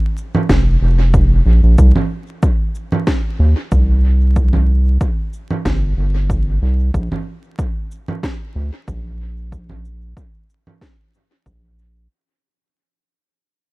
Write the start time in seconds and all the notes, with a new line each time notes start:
0.17 shaker
0.35 low conga
0.49 F1, kick, snare, shaker
0.81 F1
1.14 F1, kick, shaker
1.46 A#1
1.63 A#1
1.78 C2, kick, shaker
1.96 low conga
2.43 kick, shaker
2.75 shaker
2.92 low conga
3.07 kick, snare, shaker
3.39 D#2
3.72 C2, kick, shaker
4.36 kick, shaker
4.53 low conga
5.01 kick, shaker
5.33 shaker
5.51 low conga
5.65 G1, kick, snare, shaker
5.97 G1
6.30 kick, shaker
6.62 C2
6.94 A#1, kick, shaker
7.12 low conga
7.59 kick, shaker
7.91 shaker
8.08 low conga
8.23 kick, snare, shaker
8.56 D2
8.88 A#1, kick, shaker
9.52 kick, shaker
9.70 low conga
9.85 shaker
10.17 kick, shaker
10.50 shaker
10.67 low conga
10.81 kick, snare, shaker
11.14 shaker
11.46 A#1, kick, shaker
11.79 shaker